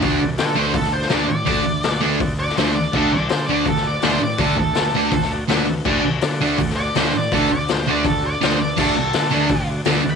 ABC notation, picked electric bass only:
X:1
M:4/4
L:1/8
Q:1/4=165
K:Dmix
V:1 name="Picked electric bass" clef=bass
D,, C,, D, D,, D,,2 D,, A,, | D,, D,, D,, D,, D,,2 D,,2 | D,, C,, D, D,, D,,2 D,, A,, | D,, D,, D,, D,, D,,2 D,,2 |
D,, C,, D, D,, D,,2 D,, A,, | D,, D,, D,, D,, D,,2 D,,2 | D,, C,, D, D,, D,,2 D,, D,, |]